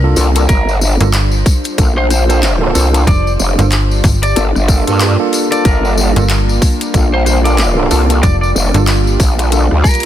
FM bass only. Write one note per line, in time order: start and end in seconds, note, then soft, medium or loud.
0.00 0.15 C2 loud
1.01 1.44 G1 medium
3.07 3.37 F1 medium
3.59 4.02 G1 medium
4.04 4.34 G1 loud
6.16 6.60 G1 medium
8.23 8.53 F1 loud
8.74 9.18 G1 medium